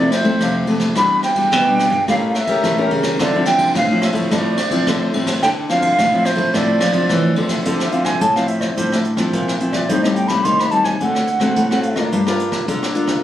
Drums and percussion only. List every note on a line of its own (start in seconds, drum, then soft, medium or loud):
0.12 cross-stick medium
0.12 ride medium
0.24 kick medium
0.24 ride soft
0.41 kick medium
0.41 cross-stick medium
0.41 ride medium
0.67 ride soft
0.80 kick medium
0.80 cross-stick medium
0.80 ride soft
0.95 kick medium
0.95 cross-stick medium
0.95 ride soft
1.23 cross-stick medium
1.23 ride soft
1.36 kick medium
1.36 ride medium
1.52 kick loud
1.52 cross-stick medium
1.52 ride medium
1.79 cross-stick medium
1.79 ride soft
1.92 kick medium
1.92 ride soft
2.08 kick medium
2.08 cross-stick medium
2.08 ride medium
2.35 cross-stick medium
2.35 ride soft
2.47 kick medium
2.47 ride soft
2.64 kick medium
2.64 cross-stick medium
2.64 ride medium
2.91 ride soft
3.03 kick medium
3.03 cross-stick medium
3.03 ride medium
3.19 kick medium
3.19 cross-stick medium
3.19 ride medium
3.45 cross-stick medium
3.45 ride medium
3.59 kick medium
3.59 ride medium
3.75 kick medium
3.75 cross-stick medium
3.75 ride medium
4.02 cross-stick medium
4.02 ride medium
4.15 kick medium
4.15 ride soft
4.31 kick medium
4.31 cross-stick medium
4.31 ride medium
4.58 cross-stick medium
4.58 ride medium
4.71 kick medium
4.71 ride medium
4.87 kick medium
4.87 cross-stick medium
4.87 ride soft
5.14 ride medium
5.27 kick medium
5.27 cross-stick medium
5.27 ride medium
5.43 kick medium
5.43 cross-stick medium
5.43 ride medium
5.69 cross-stick medium
5.69 ride medium
5.82 kick medium
5.82 ride medium
5.99 kick loud
5.99 cross-stick medium
5.99 ride medium
6.25 cross-stick medium
6.25 ride medium
6.38 kick medium
6.38 ride medium
6.54 kick medium
6.54 cross-stick medium
6.54 ride soft
6.81 cross-stick medium
6.81 ride medium
6.93 kick medium
6.93 ride soft
7.09 kick medium
7.09 cross-stick medium
7.09 ride soft
7.36 ride soft
7.49 kick medium
7.49 cross-stick medium
7.49 ride soft
7.65 kick medium
7.65 closed hi-hat medium
7.80 cross-stick medium
7.80 closed hi-hat soft
7.92 closed hi-hat soft
8.05 kick medium
8.05 cross-stick medium
8.21 kick loud
8.21 closed hi-hat medium
8.36 cross-stick medium
8.36 closed hi-hat soft
8.48 closed hi-hat medium
8.61 kick medium
8.61 cross-stick medium
8.77 kick medium
8.77 closed hi-hat medium
8.92 cross-stick medium
8.92 closed hi-hat soft
9.04 closed hi-hat soft
9.17 kick medium
9.17 cross-stick medium
9.17 closed hi-hat soft
9.33 kick medium
9.33 closed hi-hat medium
9.48 cross-stick medium
9.60 closed hi-hat soft
9.73 kick medium
9.73 cross-stick medium
9.89 kick medium
9.89 closed hi-hat medium
10.04 cross-stick medium
10.16 closed hi-hat soft
10.28 kick medium
10.28 cross-stick medium
10.28 closed hi-hat soft
10.45 kick medium
10.45 closed hi-hat medium
10.59 cross-stick medium
10.71 closed hi-hat soft
10.84 kick medium
10.84 cross-stick medium
11.00 kick medium
11.00 closed hi-hat medium
11.15 cross-stick medium
11.27 closed hi-hat medium
11.40 kick medium
11.40 cross-stick medium
11.56 kick medium
11.56 closed hi-hat medium
11.71 cross-stick medium
11.83 closed hi-hat soft
11.96 kick medium
11.96 cross-stick medium
11.96 closed hi-hat soft
12.12 kick medium
12.12 closed hi-hat medium
12.27 cross-stick medium
12.27 closed hi-hat soft
12.39 closed hi-hat soft
12.52 kick medium
12.52 cross-stick medium
12.68 kick loud
12.68 closed hi-hat medium
12.83 cross-stick medium
12.83 closed hi-hat soft
12.95 closed hi-hat medium
13.07 kick medium
13.07 cross-stick medium